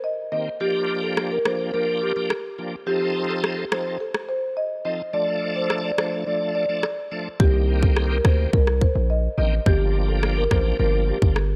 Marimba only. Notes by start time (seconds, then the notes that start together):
0.04 D#5
0.32 D#5
0.61 G4
1.03 A4
1.31 A#4
1.46 C5
1.74 A#4
2.02 G4
2.87 G4
3.29 A4
3.58 A4
3.72 C5
4.00 A4
4.29 C5
4.57 D#5
4.85 D#5
5.13 D5
5.56 C5
5.84 D5
5.98 C5
6.27 D5
6.55 D5
7.40 G4
7.82 A4
8.11 A#4
8.25 C5
8.53 A#4
8.82 C5
9.10 D#5
9.38 D#5
9.67 G4
10.09 A4
10.37 A#4
10.51 C5
10.80 A#4
11.08 G4